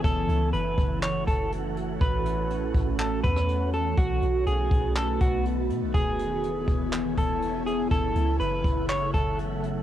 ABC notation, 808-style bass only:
X:1
M:4/4
L:1/16
Q:1/4=122
K:F#dor
V:1 name="808-style bass" clef=bass
F,,,2 C,,2 F,,,2 F,,,4 F,,,6 | A,,,6 A,,,4 E,,6 | B,,,2 B,,,2 B,,,2 B,,,4 B,,,4 B,, B,,, | E,,,6 E,,,4 E,,,6 |
F,,,2 C,,2 F,,,2 F,,,4 F,,,6 |]